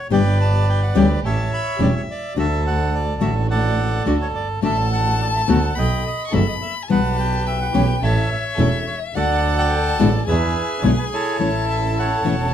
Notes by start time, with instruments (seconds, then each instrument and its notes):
0.10 double bass G1, nylon-string guitar B2 D3 G3 B3 G4, string section B3 D4 G4, bandoneon B4 D5 G5
0.41 bandoneon A5
0.69 bandoneon G5
0.83 bandoneon F#5
0.94 double bass D2, nylon-string guitar E3 G3 C#4 E4, string section B3 D4 G4, bandoneon G5
1.23 double bass A1, string section A3 C#4 G4, bandoneon C#5 E5 A5
1.54 bandoneon B5
1.79 double bass E1, nylon-string guitar E3 G3 C#4 E4, string section A3 C#4 G4, bandoneon D5
1.96 bandoneon C#5
2.11 bandoneon D5
2.35 double bass D2, nylon-string guitar D3 A3 D4 F#4, string section A3 D4 F#4, bandoneon A4 E5
2.67 bandoneon F#5
2.95 bandoneon D5
3.20 double bass A1, nylon-string guitar D3 A3 D4 F#4, string section A3 D4 F#4, bandoneon E5
3.51 bandoneon A4 D5 F#5
4.06 double bass D2, nylon-string guitar D3 A3 D4 F#4, string section A3 D4 F#4, bandoneon D5
4.21 bandoneon C#5
4.35 double bass G1, bandoneon D5
4.62 double bass A1, nylon-string guitar D3 A3 D4 F#4, string section A3 D4 F#4, bandoneon A4 E5, violin A5
4.93 bandoneon F#5
5.22 bandoneon D5
5.35 bandoneon E5
5.48 double bass D2, nylon-string guitar B2 D#3 A3 B3 F#4, string section A3 D4 F#4, bandoneon F#5
5.75 double bass B1, string section B3 D#4 A4, bandoneon D#5 G5, violin B5
6.07 bandoneon D#5
6.26 violin C#6
6.32 double bass F#1, nylon-string guitar B2 D#3 A3 B3 F#4, string section B3 D#4 A4, bandoneon E5, violin B5
6.48 bandoneon D#5
6.62 bandoneon E5
6.83 violin G#5
6.88 double bass B1, nylon-string guitar B2 E3 G3 B3 E4, string section B3 E4 G4, bandoneon B4 F#5, violin A5
7.20 bandoneon G5
7.46 bandoneon E5, violin G5
7.61 bandoneon F#5
7.73 double bass B1, nylon-string guitar E3 A3 C#4 E4, string section B3 E4 G4, bandoneon G5
8.01 double bass A1, string section C#4 E4 A4, bandoneon C#5 E5 A5, violin E5
8.32 bandoneon E5
8.57 double bass E1, nylon-string guitar E3 A3 C#4 E4, string section C#4 E4 A4, bandoneon E5
8.87 bandoneon C#5
9.13 double bass D2, nylon-string guitar D3 A3 D4 F#4, string section F#3 D4 A4, bandoneon A4 D5 F#5, violin F#5
9.58 bandoneon D5 G5
9.70 violin A5
9.98 double bass A1, nylon-string guitar B2 D3 G#3 B3 E4, string section D4 F#4 A4, bandoneon F#5
10.26 double bass E2, string section D4 E4 G#4, bandoneon G#4 B4 E5, violin G#5
10.82 double bass B1, nylon-string guitar B2 D3 G#3 B3 E4, string section D4 E4 G#4, bandoneon C#5
10.99 bandoneon B4
11.13 bandoneon E4 A4 C#5
11.39 double bass A1, nylon-string guitar E3 A3 C#4 E4, string section C#4 E4 A4, violin A5
11.70 bandoneon E5
11.96 bandoneon A4 C#5 F#5, violin A5
12.24 double bass E1, nylon-string guitar E3 A3 C#4 E4, string section C#4 E4 A4